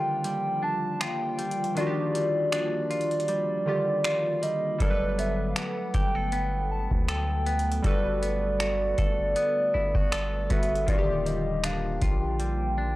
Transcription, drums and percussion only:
0.24 closed hi-hat medium
1.01 finger snap loud
1.01 closed hi-hat medium
1.39 closed hi-hat medium
1.51 closed hi-hat medium
1.64 closed hi-hat medium
1.77 closed hi-hat medium
2.15 closed hi-hat medium
2.52 finger snap loud
2.52 closed hi-hat medium
2.91 closed hi-hat soft
3.01 closed hi-hat soft
3.11 closed hi-hat soft
3.20 closed hi-hat soft
3.28 closed hi-hat medium
4.05 finger snap loud
4.05 closed hi-hat medium
4.43 closed hi-hat medium
4.80 kick loud
4.80 closed hi-hat medium
5.19 closed hi-hat medium
5.56 finger snap loud
5.56 closed hi-hat medium
5.94 kick medium
5.94 closed hi-hat medium
6.32 closed hi-hat medium
6.91 kick medium
7.08 finger snap loud
7.08 closed hi-hat medium
7.46 closed hi-hat medium
7.59 closed hi-hat medium
7.72 closed hi-hat medium
7.84 kick loud
7.84 closed hi-hat medium
8.23 closed hi-hat medium
8.60 finger snap loud
8.60 closed hi-hat medium
8.98 kick medium
8.98 closed hi-hat medium
9.36 closed hi-hat medium
9.95 kick medium
10.12 finger snap loud
10.12 closed hi-hat medium
10.50 kick medium
10.50 closed hi-hat medium
10.63 closed hi-hat medium
10.75 closed hi-hat medium
10.88 kick loud
10.88 closed hi-hat medium
11.26 closed hi-hat medium
11.64 finger snap loud
11.64 closed hi-hat medium
12.02 kick medium
12.02 closed hi-hat medium
12.40 closed hi-hat medium

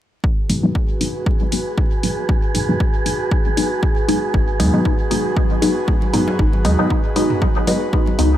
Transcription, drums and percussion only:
0.24 kick loud
0.50 open hi-hat medium
0.75 kick medium
1.01 open hi-hat medium
1.26 kick loud
1.52 open hi-hat medium
1.78 kick loud
2.03 open hi-hat medium
2.29 kick loud
2.55 open hi-hat medium
2.80 kick loud
3.06 open hi-hat medium
3.31 kick loud
3.57 open hi-hat medium
3.83 kick loud
4.09 open hi-hat medium
4.34 kick loud
4.60 open hi-hat medium
4.85 kick loud
5.11 open hi-hat medium
5.37 kick loud
5.62 open hi-hat medium
5.62 high conga medium
5.88 kick loud
6.02 high conga medium
6.14 mid tom medium
6.14 open hi-hat medium
6.28 high conga medium
6.39 kick loud
6.53 high conga medium
6.65 open hi-hat medium
6.90 kick loud
7.16 open hi-hat medium
7.30 mid tom medium
7.42 kick loud
7.42 high conga medium
7.67 open hi-hat medium
7.67 high conga medium
7.93 kick loud
8.07 high conga medium
8.19 open hi-hat medium

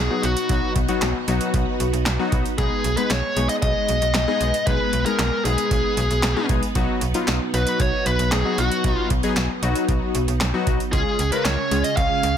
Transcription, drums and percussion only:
0.23 closed hi-hat medium
0.37 closed hi-hat medium
0.49 kick loud
0.49 closed hi-hat medium
0.76 kick loud
0.76 closed hi-hat medium
0.88 closed hi-hat soft
1.01 snare loud
1.01 clap loud
1.01 closed hi-hat medium
1.28 closed hi-hat medium
1.41 closed hi-hat medium
1.54 kick medium
1.54 closed hi-hat medium
1.80 closed hi-hat medium
1.94 closed hi-hat soft
2.06 snare loud
2.06 clap loud
2.06 closed hi-hat medium
2.32 kick medium
2.32 closed hi-hat medium
2.46 closed hi-hat medium
2.58 kick loud
2.58 closed hi-hat medium
2.84 closed hi-hat medium
2.97 closed hi-hat soft
3.10 snare loud
3.10 clap loud
3.10 closed hi-hat medium
3.37 closed hi-hat medium
3.49 closed hi-hat medium
3.62 kick medium
3.62 closed hi-hat medium
3.89 closed hi-hat medium
4.02 closed hi-hat soft
4.14 snare loud
4.14 clap loud
4.14 closed hi-hat medium
4.41 closed hi-hat medium
4.54 closed hi-hat medium
4.67 kick loud
4.67 closed hi-hat medium
4.93 closed hi-hat medium
5.06 closed hi-hat soft
5.19 snare loud
5.19 clap loud
5.19 closed hi-hat medium
5.45 closed hi-hat medium
5.58 closed hi-hat medium
5.71 kick medium
5.71 closed hi-hat medium
5.97 closed hi-hat medium
6.11 closed hi-hat soft
6.23 snare loud
6.23 clap loud
6.23 closed hi-hat medium
6.49 kick medium
6.49 closed hi-hat medium
6.63 closed hi-hat soft
6.75 kick loud
6.75 closed hi-hat medium
7.01 closed hi-hat medium
7.14 closed hi-hat medium
7.27 snare loud
7.27 clap loud
7.27 closed hi-hat medium
7.54 closed hi-hat medium
7.67 closed hi-hat medium
7.80 kick medium
7.80 closed hi-hat medium
8.06 closed hi-hat medium
8.19 closed hi-hat soft
8.32 snare loud
8.32 clap loud
8.32 closed hi-hat medium
8.58 closed hi-hat medium
8.72 closed hi-hat medium
8.84 kick loud
8.84 closed hi-hat medium
9.10 kick medium
9.10 closed hi-hat medium
9.23 closed hi-hat soft
9.36 snare loud
9.36 clap loud
9.36 closed hi-hat medium
9.63 closed hi-hat medium
9.75 closed hi-hat medium
9.88 kick medium
9.88 closed hi-hat medium
10.15 closed hi-hat medium
10.28 closed hi-hat soft
10.41 snare loud
10.41 clap loud
10.41 closed hi-hat medium
10.67 kick medium
10.67 closed hi-hat medium
10.80 closed hi-hat medium
10.93 kick loud
10.93 closed hi-hat medium
11.19 closed hi-hat medium
11.32 closed hi-hat soft
11.45 snare loud
11.45 clap loud
11.45 closed hi-hat medium
11.71 closed hi-hat medium
11.84 closed hi-hat medium
11.97 kick medium
11.97 closed hi-hat medium
12.23 closed hi-hat medium

